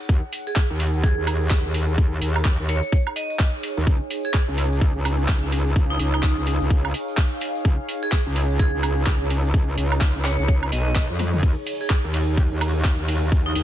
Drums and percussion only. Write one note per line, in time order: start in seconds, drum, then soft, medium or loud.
0.00 tambourine medium
0.08 kick loud
0.08 tambourine soft
0.32 open hi-hat loud
0.32 tambourine loud
0.47 tambourine medium
0.56 kick loud
0.56 clap loud
0.80 open hi-hat medium
0.80 tambourine medium
0.94 tambourine medium
1.03 kick loud
1.03 tambourine soft
1.27 open hi-hat loud
1.27 tambourine medium
1.27 high woodblock medium
1.41 tambourine medium
1.50 kick loud
1.50 clap loud
1.50 tambourine soft
1.74 open hi-hat loud
1.74 tambourine loud
1.89 tambourine medium
1.98 kick loud
1.98 tambourine soft
2.22 open hi-hat loud
2.22 tambourine medium
2.36 tambourine medium
2.36 high woodblock medium
2.45 kick loud
2.45 clap loud
2.69 open hi-hat medium
2.69 tambourine medium
2.83 tambourine medium
2.92 kick loud
2.92 tambourine soft
3.07 high woodblock medium
3.16 open hi-hat loud
3.16 tambourine loud
3.30 tambourine medium
3.39 kick loud
3.39 clap loud
3.39 tambourine soft
3.63 open hi-hat loud
3.63 tambourine medium
3.77 tambourine soft
3.87 kick loud
3.87 tambourine soft
4.10 open hi-hat loud
4.10 tambourine loud
4.24 tambourine medium
4.34 kick loud
4.34 clap loud
4.34 tambourine soft
4.58 open hi-hat medium
4.58 tambourine loud
4.72 tambourine medium
4.81 kick loud
4.81 tambourine soft
5.05 open hi-hat loud
5.05 tambourine medium
5.05 high woodblock medium
5.19 tambourine medium
5.28 kick loud
5.28 clap loud
5.52 open hi-hat medium
5.52 tambourine medium
5.67 tambourine medium
5.76 kick loud
5.76 tambourine soft
5.99 open hi-hat loud
5.99 tambourine medium
6.14 tambourine soft
6.14 high woodblock medium
6.23 kick loud
6.23 clap loud
6.46 open hi-hat medium
6.46 tambourine medium
6.61 tambourine soft
6.70 kick loud
6.70 tambourine soft
6.85 high woodblock medium
6.94 open hi-hat loud
6.94 tambourine loud
7.08 tambourine medium
7.17 kick loud
7.17 clap loud
7.41 open hi-hat loud
7.41 tambourine medium
7.55 tambourine medium
7.64 kick loud
7.64 tambourine soft
7.89 open hi-hat loud
7.89 tambourine medium
8.03 tambourine soft
8.12 kick loud
8.12 clap loud
8.36 open hi-hat medium
8.36 tambourine medium
8.51 tambourine soft
8.59 kick loud
8.59 tambourine soft
8.83 open hi-hat loud
8.83 tambourine loud
8.83 high woodblock medium
8.98 tambourine medium
9.07 kick loud
9.07 clap loud
9.30 open hi-hat medium
9.30 tambourine loud
9.45 tambourine medium
9.54 kick loud
9.54 tambourine soft
9.78 open hi-hat loud
9.78 tambourine medium
9.92 tambourine soft
9.92 high woodblock medium
10.01 kick loud
10.01 clap loud
10.01 tambourine soft
10.25 clap medium
10.25 open hi-hat medium
10.25 tambourine medium
10.39 tambourine soft
10.48 kick loud
10.48 tambourine soft
10.63 high woodblock medium
10.72 open hi-hat loud
10.72 tambourine medium
10.86 tambourine medium
10.96 kick loud
10.96 clap loud
11.19 open hi-hat loud
11.19 high tom medium
11.19 tambourine medium
11.33 mid tom medium
11.33 tambourine soft
11.43 kick loud
11.43 ride medium
11.43 tambourine soft
11.66 open hi-hat loud
11.66 ride medium
11.66 tambourine loud
11.81 tambourine medium
11.90 kick loud
11.90 clap loud
11.90 ride medium
12.14 open hi-hat medium
12.14 ride medium
12.14 tambourine medium
12.28 tambourine soft
12.37 kick loud
12.37 ride medium
12.37 tambourine soft
12.61 open hi-hat loud
12.61 ride medium
12.61 tambourine medium
12.61 high woodblock medium
12.75 tambourine medium
12.85 kick loud
12.85 clap loud
12.85 ride medium
13.08 open hi-hat loud
13.08 ride medium
13.08 tambourine loud
13.22 tambourine medium
13.32 kick loud
13.32 ride medium
13.32 tambourine soft
13.55 open hi-hat loud
13.55 ride medium
13.55 tambourine loud